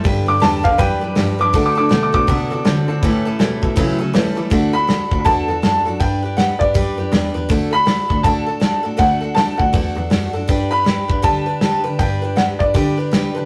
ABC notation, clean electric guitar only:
X:1
M:4/4
L:1/8
Q:"Swing" 1/4=161
K:D
V:1 name="Clean electric guitar" clef=bass
[G,,D,]2 [G,,D,] [G,,D,] [G,,E,]2 [G,,=F,] [G,,F,] | [D,A,]2 [D,A,] [D,A,] [D,B,]2 [D,=C] [D,C] | [A,,E,]2 [A,,E,] [A,,E,] [A,,F,]2 [A,,G,] [A,,G,] | z8 |
z8 | z8 | z8 | z8 |
z8 |]